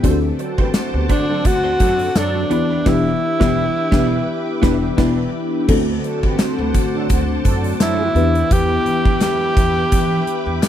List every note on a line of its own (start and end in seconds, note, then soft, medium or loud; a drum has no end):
0.03 0.30 D2 loud
0.03 1.06 D3 medium
0.03 0.17 A3 medium
0.03 1.28 C4 medium
0.03 1.28 D4 medium
0.03 0.18 D4 medium
0.03 0.18 F#4 medium
0.03 1.29 F#4 medium
0.03 0.11 G#4 medium
0.03 2.48 C5 medium
0.03 0.18 C5 medium
0.03 2.48 F#5 medium
0.03 2.48 A5 medium
0.03 2.48 D6 medium
0.03 kick loud
0.03 closed hi-hat medium
0.11 1.32 A4 loud
0.22 muted clean electric guitar stroke soft
0.39 0.55 F#3 medium
0.39 0.55 D4 medium
0.39 0.55 A4 medium
0.39 muted clean electric guitar stroke soft
0.39 closed hi-hat medium
0.58 0.70 D3 medium
0.58 0.68 A3 medium
0.58 0.71 B3 medium
0.58 0.68 D4 medium
0.58 0.68 F#4 medium
0.58 0.71 G4 medium
0.58 0.71 B4 loud
0.58 0.67 C5 medium
0.58 kick medium
0.74 0.90 A3 medium
0.74 0.90 F#4 medium
0.74 0.90 C5 medium
0.74 muted clean electric guitar stroke soft
0.74 snare loud
0.74 clap medium
0.74 closed hi-hat medium
0.74 tambourine medium
0.93 1.06 D2 loud
0.93 1.07 B3 medium
0.93 1.06 G4 medium
0.93 1.06 B4 medium
0.93 muted clean electric guitar stroke medium
1.09 1.36 D3 medium
1.09 1.24 A3 medium
1.09 1.24 D4 medium
1.09 1.48 D4 loud
1.09 1.24 F#4 medium
1.09 1.24 C5 loud
1.09 kick medium
1.09 closed hi-hat medium
1.28 1.42 F#3 loud
1.28 1.39 A3 medium
1.28 1.42 D4 loud
1.28 1.38 D4 medium
1.28 1.38 F#4 medium
1.28 1.42 A4 loud
1.28 1.38 C5 medium
1.45 1.71 D2 medium
1.45 1.59 D3 medium
1.45 1.59 C4 medium
1.45 1.59 F#4 loud
1.45 2.19 F#4 loud
1.45 muted clean electric guitar stroke soft
1.45 kick loud
1.45 closed hi-hat medium
1.63 1.74 A3 medium
1.63 1.74 D4 medium
1.63 1.73 F#4 medium
1.63 1.73 C5 medium
1.79 2.07 F#2 medium
1.79 2.09 F#3 loud
1.79 1.94 A3 medium
1.79 1.94 D4 loud
1.79 2.08 D4 loud
1.79 1.95 F#4 loud
1.79 2.08 A4 loud
1.79 1.95 C5 loud
1.79 kick medium
1.79 closed hi-hat medium
1.99 closed hi-hat soft
2.15 2.42 F#2 medium
2.15 2.44 F#3 loud
2.15 2.44 D4 loud
2.15 2.90 D4 loud
2.15 2.44 A4 loud
2.15 muted clean electric guitar stroke soft
2.15 snare loud
2.15 clap medium
2.15 closed hi-hat medium
2.15 tambourine medium
2.35 muted clean electric guitar stroke soft
2.50 2.77 E2 loud
2.50 2.84 E3 medium
2.50 2.64 B3 medium
2.50 2.85 B3 medium
2.50 2.85 D4 medium
2.50 2.65 D4 medium
2.50 2.85 E4 medium
2.50 2.65 G4 medium
2.50 2.86 G4 medium
2.50 5.65 B4 medium
2.50 2.65 B4 medium
2.50 5.65 E5 medium
2.50 5.65 G5 medium
2.50 5.65 D6 loud
2.50 closed hi-hat medium
2.69 2.80 B3 medium
2.69 2.80 D4 medium
2.69 2.79 G4 medium
2.69 2.79 B4 medium
2.85 3.11 E1 loud
2.85 3.11 E3 loud
2.85 3.10 B3 loud
2.85 3.11 B3 loud
2.85 3.10 D4 loud
2.85 3.11 D4 loud
2.85 3.11 E4 loud
2.85 4.99 E4 loud
2.85 3.11 G4 loud
2.85 3.11 B4 loud
2.85 kick loud
2.85 snare loud
2.85 crash medium
3.40 3.64 E1 loud
3.40 3.64 E3 loud
3.40 3.64 B3 medium
3.40 3.65 B3 loud
3.40 3.64 D4 medium
3.40 3.64 D4 loud
3.40 3.64 E4 medium
3.40 3.64 G4 loud
3.40 3.64 G4 medium
3.40 3.64 B4 loud
3.40 kick loud
3.40 snare loud
3.91 4.17 E1 loud
3.91 4.17 E3 medium
3.91 4.16 B3 loud
3.91 4.17 D4 loud
3.91 4.17 E4 loud
3.91 4.17 G4 loud
3.91 4.17 G4 medium
3.91 4.17 B4 loud
3.91 kick loud
3.91 snare loud
4.62 4.87 E1 loud
4.62 4.87 B3 loud
4.62 4.87 D4 loud
4.62 4.87 E4 loud
4.62 4.87 G4 loud
4.62 4.88 B4 loud
4.62 kick loud
4.62 snare loud
4.97 5.22 E1 loud
4.97 5.22 B3 loud
4.97 5.22 D4 loud
4.97 5.23 E4 loud
4.97 5.23 G4 loud
4.97 5.23 B4 loud
4.97 kick loud
4.97 snare loud
4.97 crash medium
5.68 5.95 D2 loud
5.68 6.70 D3 medium
5.68 6.93 A3 loud
5.68 6.93 C4 medium
5.68 6.93 D4 medium
5.68 6.94 F#4 medium
5.68 6.94 A4 loud
5.68 8.13 C5 medium
5.68 8.13 F#5 medium
5.68 8.13 A5 medium
5.68 10.68 D6 loud
5.68 kick loud
5.68 crash loud
6.04 6.19 F#3 medium
6.04 6.19 D4 medium
6.04 6.19 A4 medium
6.04 closed hi-hat medium
6.23 6.35 D3 medium
6.23 6.36 B3 medium
6.23 6.36 G4 medium
6.23 6.36 B4 loud
6.23 kick medium
6.39 6.55 A3 medium
6.39 6.55 F#4 medium
6.39 6.55 C5 medium
6.39 snare loud
6.39 clap medium
6.39 closed hi-hat medium
6.39 tambourine medium
6.58 6.70 D2 loud
6.58 6.71 B3 medium
6.58 6.71 G4 medium
6.58 6.71 B4 medium
6.74 7.01 D3 loud
6.74 kick loud
6.74 closed hi-hat medium
6.94 7.07 F#3 medium
6.94 7.07 D4 loud
6.94 7.07 A4 loud
7.10 7.36 D2 medium
7.10 7.24 D3 medium
7.10 7.24 C4 loud
7.10 7.24 F#4 loud
7.10 kick loud
7.10 closed hi-hat medium
7.45 7.72 F#2 medium
7.45 7.73 F#3 loud
7.45 7.73 D4 loud
7.45 7.73 A4 loud
7.45 kick medium
7.45 closed hi-hat medium
7.64 closed hi-hat medium
7.80 8.07 F#2 loud
7.80 8.09 F#3 loud
7.80 8.09 D4 loud
7.80 8.54 E4 loud
7.80 8.08 A4 loud
7.80 snare loud
7.80 clap loud
7.80 closed hi-hat medium
7.80 tambourine medium
8.15 8.42 E2 loud
8.15 9.17 E3 medium
8.15 9.40 B3 medium
8.15 9.40 D4 medium
8.15 9.40 E4 medium
8.15 9.41 G4 medium
8.15 10.68 B4 medium
8.15 9.41 B4 medium
8.15 10.68 E5 medium
8.15 10.68 G5 medium
8.15 closed hi-hat medium
8.35 closed hi-hat medium
8.51 8.77 E2 loud
8.51 9.22 G4 loud
8.51 kick loud
8.51 closed hi-hat medium
8.86 9.27 E2 loud
8.86 closed hi-hat medium
9.05 kick medium
9.21 10.68 G4 loud
9.21 snare loud
9.21 clap medium
9.21 closed hi-hat medium
9.21 tambourine medium
9.57 9.83 E2 medium
9.57 kick loud
9.57 closed hi-hat medium
9.92 10.19 E3 loud
9.92 kick loud
9.92 closed hi-hat loud
10.27 closed hi-hat medium
10.46 10.58 E2 medium
10.63 snare loud
10.63 clap medium
10.63 closed hi-hat medium
10.63 tambourine medium